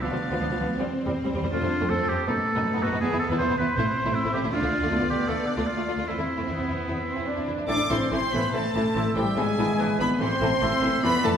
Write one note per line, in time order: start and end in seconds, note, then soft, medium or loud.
0.02 0.07 D2 medium
0.02 0.07 F3 medium
0.02 0.76 B3 medium
0.02 0.08 B3 medium
0.02 0.96 D4 medium
0.02 0.76 F5 medium
0.12 0.16 D2 soft
0.12 0.16 F3 soft
0.12 0.17 B3 soft
0.31 0.34 D2 medium
0.31 0.35 F3 medium
0.31 0.35 B3 medium
0.40 0.44 D2 soft
0.40 0.44 F3 soft
0.40 0.46 B3 soft
0.50 0.54 D2 soft
0.50 0.54 F3 soft
0.50 0.55 B3 soft
0.59 0.63 D2 medium
0.59 0.63 F3 medium
0.59 0.64 B3 medium
0.78 0.81 E2 medium
0.78 0.82 G3 medium
0.78 1.52 C4 medium
0.78 0.83 C4 medium
0.78 2.27 C5 medium
1.06 1.09 E2 medium
1.06 1.10 G3 medium
1.06 1.10 C4 medium
1.25 1.28 E2 soft
1.25 1.28 G3 medium
1.25 1.29 C4 medium
1.33 1.37 E2 medium
1.33 1.38 G3 medium
1.33 1.38 C4 medium
1.43 1.46 E2 soft
1.43 1.47 G3 soft
1.43 1.47 C4 soft
1.52 1.56 F2 medium
1.52 1.57 A3 medium
1.52 1.57 C4 medium
1.52 1.89 D4 medium
1.52 1.91 F4 medium
1.61 1.65 F2 soft
1.61 1.66 A3 soft
1.61 1.66 C4 soft
1.80 1.84 F2 medium
1.80 1.84 A3 medium
1.80 1.84 C4 medium
1.90 1.94 F2 soft
1.90 1.93 A3 soft
1.90 2.26 C4 medium
1.90 1.94 C4 soft
1.90 2.10 A4 medium
1.99 2.03 F2 soft
1.99 2.03 A3 medium
1.99 2.04 C4 soft
2.08 2.13 F2 medium
2.08 2.12 A3 medium
2.08 2.13 C4 medium
2.08 2.27 G4 medium
2.27 2.31 F#2 medium
2.27 3.00 A3 medium
2.27 2.31 B3 medium
2.27 2.31 D#4 medium
2.27 2.85 A4 medium
2.27 3.77 B4 medium
2.55 2.59 F#2 medium
2.55 2.59 B3 medium
2.55 2.59 D#4 medium
2.73 2.78 F#2 medium
2.73 2.77 B3 medium
2.73 2.79 D#4 medium
2.83 2.87 F#2 medium
2.83 2.87 B3 medium
2.83 2.88 D#4 medium
2.83 3.01 F#4 medium
2.93 2.96 F#2 soft
2.93 2.96 B3 medium
2.93 2.98 D#4 medium
3.01 3.06 E2 medium
3.01 3.77 B3 medium
3.01 3.06 B3 medium
3.01 3.07 E4 medium
3.01 3.19 G#4 medium
3.11 3.16 E2 soft
3.11 3.14 B3 soft
3.11 3.16 E4 medium
3.20 3.28 A4 medium
3.30 3.34 E2 medium
3.30 3.34 B3 medium
3.30 3.35 E4 medium
3.38 3.43 E2 soft
3.38 3.44 B3 soft
3.38 3.44 E4 medium
3.38 3.57 C5 medium
3.49 3.53 E2 medium
3.49 3.53 B3 soft
3.49 3.54 E4 soft
3.58 3.62 E2 medium
3.58 3.62 B3 medium
3.58 3.63 E4 medium
3.58 3.78 B4 medium
3.76 3.80 A1 medium
3.76 3.81 A3 medium
3.76 4.51 C4 medium
3.76 3.81 E4 medium
3.76 4.16 C5 medium
3.76 4.53 C5 medium
4.05 4.09 A1 medium
4.05 4.09 A3 medium
4.05 4.09 E4 medium
4.15 4.33 E4 medium
4.24 4.28 A1 soft
4.24 4.28 A3 medium
4.24 4.28 E4 medium
4.33 4.38 A1 medium
4.33 4.38 A3 medium
4.33 4.38 E4 medium
4.33 4.42 G4 medium
4.43 4.47 A1 soft
4.43 4.48 A3 medium
4.43 4.48 E4 medium
4.52 4.56 D2 medium
4.52 4.57 A3 medium
4.52 4.91 D4 medium
4.52 4.57 F4 medium
4.52 5.09 F4 medium
4.52 6.04 D5 medium
4.62 4.66 D2 soft
4.62 4.67 A3 soft
4.62 4.66 F4 soft
4.81 4.85 D2 medium
4.81 4.86 A3 medium
4.81 4.86 F4 medium
4.90 4.94 D2 soft
4.90 4.95 A3 soft
4.90 5.67 B3 medium
4.90 4.95 F4 soft
5.00 5.04 D2 soft
5.00 5.05 A3 soft
5.00 5.04 F4 soft
5.09 5.13 D2 medium
5.09 5.14 A3 medium
5.09 5.14 F4 medium
5.09 5.30 G4 medium
5.28 5.32 D2 medium
5.28 5.33 A3 medium
5.28 5.32 F4 medium
5.28 5.49 A4 medium
5.47 5.68 D4 medium
5.57 5.61 D2 medium
5.57 5.62 A3 medium
5.57 5.61 F4 medium
5.66 6.08 A3 soft
5.66 6.09 F4 medium
5.77 5.81 D2 soft
5.77 5.81 A3 soft
5.77 5.81 F4 medium
5.87 5.91 D2 medium
5.87 5.91 A3 medium
5.87 5.92 F4 medium
5.97 6.01 D2 soft
5.97 6.02 A3 soft
5.97 6.02 F4 soft
6.07 6.11 E2 medium
6.07 6.12 A3 medium
6.07 7.44 C4 medium
6.07 7.47 E4 medium
6.07 6.12 E4 medium
6.07 6.88 C5 soft
6.17 6.21 E2 soft
6.17 6.22 A3 soft
6.17 6.22 E4 soft
6.37 6.42 E2 medium
6.37 6.42 A3 medium
6.37 6.41 E4 medium
6.47 6.52 E2 soft
6.47 7.04 B3 medium
6.47 6.51 E4 soft
6.58 6.62 E2 soft
6.58 6.62 E4 soft
6.68 6.72 E2 medium
6.68 6.72 E4 medium
6.88 6.92 E2 medium
6.88 6.92 E4 medium
6.88 7.49 B4 soft
7.08 7.28 C4 soft
7.17 7.22 E2 medium
7.17 7.21 E4 soft
7.27 7.68 D4 medium
7.36 7.42 E2 soft
7.36 7.41 E4 soft
7.46 7.52 E2 medium
7.46 7.51 E4 soft
7.57 7.62 E2 soft
7.57 7.62 E4 soft
7.67 7.76 A1 medium
7.67 7.76 E3 soft
7.67 7.76 A3 medium
7.67 7.76 C4 medium
7.67 7.77 D4 medium
7.67 7.88 D4 medium
7.67 7.76 E4 soft
7.67 8.08 A4 medium
7.67 7.78 D5 medium
7.67 7.89 D6 medium
7.89 7.98 A1 medium
7.89 7.98 E3 soft
7.89 7.98 A3 soft
7.89 8.11 C4 medium
7.89 7.97 C4 soft
7.89 8.10 C4 medium
7.89 7.98 E4 soft
7.89 8.10 C5 medium
7.89 8.11 C6 medium
8.10 8.19 A1 medium
8.10 8.19 E3 soft
8.10 8.19 A3 soft
8.10 8.19 C4 medium
8.10 8.33 C4 medium
8.10 8.20 C4 soft
8.10 8.20 E4 medium
8.10 8.32 C5 medium
8.10 8.94 C5 medium
8.10 8.33 C6 medium
8.33 8.41 A1 medium
8.33 8.41 E3 soft
8.33 8.41 A3 soft
8.33 8.54 B3 medium
8.33 8.41 C4 soft
8.33 8.41 E4 soft
8.33 8.55 B4 medium
8.33 8.54 B5 medium
8.53 8.62 A1 medium
8.53 8.62 E3 medium
8.53 8.62 A3 medium
8.53 9.15 A3 medium
8.53 9.17 A3 medium
8.53 8.62 C4 soft
8.53 8.63 E4 soft
8.53 9.15 A4 medium
8.53 9.15 A5 medium
8.75 8.83 A1 medium
8.75 8.83 E3 soft
8.75 8.83 A3 soft
8.75 8.84 C4 soft
8.75 8.84 E4 soft
8.96 9.04 A1 medium
8.96 9.04 E3 soft
8.96 9.04 A3 soft
8.96 9.04 C4 soft
8.96 9.04 E4 soft
8.96 9.80 E5 medium
9.16 9.24 A1 medium
9.16 9.24 E3 soft
9.16 9.36 G3 medium
9.16 9.37 G3 medium
9.16 9.24 A3 soft
9.16 9.24 C4 soft
9.16 9.24 E4 soft
9.16 9.38 G4 medium
9.16 9.37 G5 medium
9.36 9.45 G#1 medium
9.36 9.44 E3 medium
9.36 9.99 G#3 medium
9.36 10.00 G#3 medium
9.36 9.45 B3 medium
9.36 9.45 D4 medium
9.36 9.44 E4 medium
9.36 9.98 G#4 medium
9.36 10.00 G#5 medium
9.58 9.66 G#1 medium
9.58 9.66 E3 medium
9.58 9.66 B3 medium
9.58 9.66 D4 medium
9.58 9.66 E4 medium
9.79 9.87 G#1 medium
9.79 9.87 E3 medium
9.79 9.87 B3 soft
9.79 9.87 D4 soft
9.79 9.87 E4 medium
9.79 10.23 B4 medium
9.99 10.07 G#1 medium
9.99 10.07 E3 soft
9.99 10.21 B3 medium
9.99 10.08 B3 soft
9.99 10.21 B3 medium
9.99 10.07 D4 medium
9.99 10.07 E4 soft
9.99 10.09 B4 medium
9.99 10.08 B5 medium
10.20 10.28 A1 medium
10.20 10.28 E3 medium
10.20 10.28 A3 medium
10.20 11.04 C4 medium
10.20 10.29 C4 medium
10.20 10.30 A4 medium
10.20 11.02 C5 medium
10.20 10.64 C5 medium
10.20 11.02 C6 medium
10.41 10.49 A1 medium
10.41 10.49 E3 medium
10.41 10.49 A3 medium
10.41 10.49 C4 medium
10.41 10.50 A4 medium
10.62 10.70 A1 medium
10.62 10.70 E3 medium
10.62 10.70 A3 medium
10.62 10.70 C4 soft
10.62 10.70 A4 medium
10.62 11.05 E5 medium
10.82 10.91 A1 medium
10.82 10.91 E3 medium
10.82 10.90 A3 medium
10.82 10.91 C4 medium
10.82 10.91 A4 soft
11.03 11.12 F2 medium
11.03 11.11 E3 medium
11.03 11.11 A3 medium
11.03 11.24 B3 medium
11.03 11.11 C4 medium
11.03 11.11 A4 medium
11.03 11.24 B4 medium
11.03 11.37 D5 medium
11.03 11.24 B5 loud
11.23 11.32 F2 medium
11.23 11.31 E3 medium
11.23 11.32 A3 medium
11.23 11.37 A3 medium
11.23 11.31 C4 medium
11.23 11.32 A4 medium
11.23 11.34 A4 medium
11.23 11.37 A5 medium